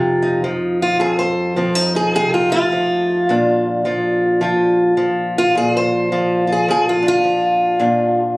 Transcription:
0.00 0.99 F2 medium
0.00 0.43 C3 medium
0.00 0.43 F3 medium
0.00 0.21 D#4 medium
0.00 0.82 F4 soft
0.22 0.98 D#4 soft
0.44 1.56 F3 medium
0.82 1.00 F4 medium
1.00 3.27 F2 medium
1.00 1.18 G#4 medium
1.19 1.95 C5 loud
1.56 2.72 F3 medium
1.56 1.75 C4 soft
1.75 1.92 D#4 soft
1.95 3.26 D#4 soft
1.95 2.14 G#4 medium
2.15 2.71 C3 medium
2.15 2.33 G#4 loud
2.34 2.51 F4 medium
2.50 3.28 A3 soft
2.50 3.65 F4 loud
2.72 3.85 F3 medium
3.29 5.55 A#2 medium
3.29 5.60 D4 medium
3.85 4.41 F3 medium
3.85 4.42 F4 soft
4.41 4.97 F3 medium
4.41 5.38 F4 medium
4.97 6.12 F3 medium
5.38 5.56 F4 loud
5.55 7.79 A#2 medium
5.55 5.75 G#4 loud
5.77 6.51 C5 loud
6.12 6.68 F3 medium
6.12 6.47 F4 soft
6.47 6.89 F4 soft
6.52 6.69 G#4 medium
6.68 7.24 F3 medium
6.68 6.88 G#4 loud
6.89 7.07 F4 medium
7.02 7.79 D4 soft
7.08 8.21 F4 loud
7.24 8.37 F3 medium
7.79 8.37 A#2 medium
7.79 8.37 D4 medium

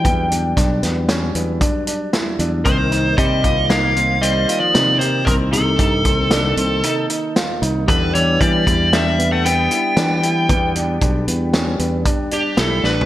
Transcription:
0.00 2.61 F#3 medium
0.00 2.61 G3 medium
0.00 2.62 D4 medium
0.00 2.13 G5 medium
0.04 0.53 E2 medium
0.04 0.25 B3 medium
0.04 kick medium
0.04 closed hi-hat medium
0.30 0.51 D4 medium
0.30 closed hi-hat medium
0.56 0.81 B1 medium
0.56 0.77 D4 medium
0.56 kick medium
0.56 snare soft
0.56 closed hi-hat medium
0.83 1.31 E2 medium
0.83 1.04 B3 medium
0.83 snare soft
0.83 closed hi-hat medium
1.09 1.30 C#4 medium
1.09 snare medium
1.09 closed hi-hat medium
1.35 1.59 E2 medium
1.35 1.56 B3 medium
1.35 closed hi-hat medium
1.61 1.82 D4 medium
1.61 kick medium
1.61 closed hi-hat medium
1.87 2.08 D4 medium
1.87 closed hi-hat medium
2.13 2.34 E4 medium
2.13 snare medium
2.13 closed hi-hat medium
2.39 2.63 E2 medium
2.39 2.60 D4 medium
2.39 closed hi-hat soft
2.64 3.14 C2 medium
2.64 7.83 D#3 medium
2.64 3.14 D#3 medium
2.64 7.84 A#3 soft
2.64 2.87 C4 medium
2.64 7.85 D#4 medium
2.64 3.18 C5 medium
2.64 kick medium
2.64 closed hi-hat medium
2.92 3.13 D#4 medium
2.92 closed hi-hat soft
3.18 3.42 C3 medium
3.18 3.66 G3 medium
3.18 3.39 C4 medium
3.18 3.72 D#5 medium
3.18 kick medium
3.18 closed hi-hat medium
3.43 4.45 C2 medium
3.43 3.65 F4 medium
3.43 kick medium
3.43 closed hi-hat soft
3.69 4.18 A#3 medium
3.69 3.91 D#4 medium
3.69 4.24 F5 medium
3.69 snare loud
3.69 closed hi-hat medium
3.96 4.17 C4 medium
3.96 closed hi-hat soft
4.21 4.58 G3 medium
4.21 4.43 C4 medium
4.21 4.60 D#5 medium
4.21 closed hi-hat medium
4.48 4.69 F4 medium
4.48 closed hi-hat medium
4.60 4.97 F3 medium
4.60 4.97 D5 medium
4.74 5.29 C3 medium
4.74 4.95 D#4 medium
4.74 snare loud
4.74 closed hi-hat medium
4.99 5.24 D#3 medium
4.99 5.21 G4 medium
4.99 5.24 C5 medium
4.99 closed hi-hat medium
5.25 5.75 C2 medium
5.25 5.32 D#3 medium
5.25 5.48 C4 medium
5.25 5.32 A#4 medium
5.25 kick medium
5.25 closed hi-hat medium
5.51 7.05 C3 medium
5.51 5.74 D#4 medium
5.51 7.06 A4 medium
5.51 closed hi-hat medium
5.79 6.03 G2 medium
5.79 6.00 D#4 medium
5.79 kick medium
5.79 closed hi-hat medium
6.05 6.53 C2 medium
6.05 6.26 C4 medium
6.05 kick medium
6.05 closed hi-hat medium
6.31 6.52 D4 medium
6.31 snare loud
6.31 closed hi-hat medium
6.57 6.81 C2 medium
6.57 6.78 C4 medium
6.57 closed hi-hat medium
6.83 7.05 D#4 medium
6.83 closed hi-hat medium
7.10 7.31 D#4 medium
7.10 closed hi-hat medium
7.36 7.57 F4 medium
7.36 snare medium
7.36 closed hi-hat medium
7.62 7.86 C2 loud
7.62 7.83 D#4 medium
7.62 closed hi-hat medium
7.86 8.37 E2 medium
7.86 8.12 D3 medium
7.86 13.05 G3 medium
7.86 8.09 B3 medium
7.86 13.06 D4 medium
7.86 13.06 G4 medium
7.86 8.13 B4 medium
7.86 kick loud
7.86 closed hi-hat medium
8.15 8.39 E3 medium
8.15 8.36 D4 medium
8.15 8.39 C#5 medium
8.15 closed hi-hat soft
8.40 8.64 E3 medium
8.40 8.89 G3 medium
8.40 8.61 B3 medium
8.40 8.94 D5 medium
8.40 kick medium
8.40 closed hi-hat medium
8.66 9.67 E2 medium
8.66 8.87 E4 medium
8.66 kick medium
8.66 closed hi-hat medium
8.93 9.29 G3 medium
8.93 9.13 D4 medium
8.93 9.29 E5 medium
8.93 snare loud
8.93 closed hi-hat medium
9.19 9.40 B3 medium
9.19 closed hi-hat medium
9.32 9.44 A3 medium
9.32 9.44 F#5 medium
9.45 12.54 B3 medium
9.45 9.66 B3 medium
9.45 12.54 G5 medium
9.45 closed hi-hat medium
9.71 9.92 E4 medium
9.71 closed hi-hat medium
9.97 10.51 E3 medium
9.97 10.18 D4 medium
9.97 snare medium
9.97 closed hi-hat medium
10.23 10.44 E4 medium
10.23 closed hi-hat medium
10.49 10.97 E2 medium
10.49 10.70 B3 medium
10.49 kick medium
10.49 closed hi-hat medium
10.75 10.96 D4 medium
10.75 closed hi-hat medium
11.01 11.25 B1 medium
11.01 11.22 D4 medium
11.01 kick medium
11.01 closed hi-hat medium
11.28 11.76 E2 medium
11.28 11.48 B3 medium
11.28 closed hi-hat soft
11.53 11.74 C#4 medium
11.53 snare loud
11.53 closed hi-hat medium
11.79 12.03 E2 medium
11.79 12.00 B3 medium
11.79 closed hi-hat soft
12.05 12.26 D4 medium
12.05 kick medium
12.05 closed hi-hat medium
12.31 12.53 D4 medium
12.31 12.59 G4 medium
12.31 closed hi-hat medium
12.57 12.81 B1 medium
12.57 12.79 E4 medium
12.57 12.83 A4 medium
12.57 13.06 B5 medium
12.57 snare loud
12.57 closed hi-hat medium
12.84 13.06 A1 medium
12.84 13.04 D4 medium
12.84 13.06 B4 medium
12.84 snare soft
13.01 floor tom medium

